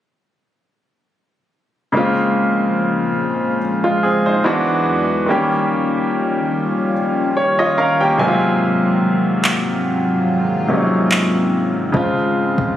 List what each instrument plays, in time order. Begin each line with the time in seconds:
1.92 analog synth pad A#2 C#3 F3 G#3 C5, grand piano C#3 G#3 A#3 C4
1.97 grand piano F4
3.84 grand piano G#3 F4
4.03 grand piano C4 G#4
4.26 grand piano D#4 C5
4.43 analog synth pad E2 E3 G#3 D4 F#4, grand piano E3 G#3 B3 D4 F#4
5.26 analog synth pad D#2 D#3 G3 C#4 F4, grand piano D#3 G3 A#3 C#4
5.31 grand piano G4
7.37 grand piano C#5
7.59 grand piano F4 C#5 D#5
7.78 grand piano C#4 A#4 F5
8.01 grand piano A#3 G4 G5
8.17 analog synth pad G#2 F#3 A#3 C4, grand piano C3 F#3 G#3 A#3 G#5
8.22 grand piano D#4
8.28 grand piano F4
9.44 clap
9.86 analog synth pad F4
10.68 grand piano C3 F#3 G#3 A#3 C#4
10.77 grand piano D#4
11.11 clap
11.92 analog synth pad C#2 F4, grand piano C#3 F3 G#3 C4, kick
11.97 grand piano F4
12.58 kick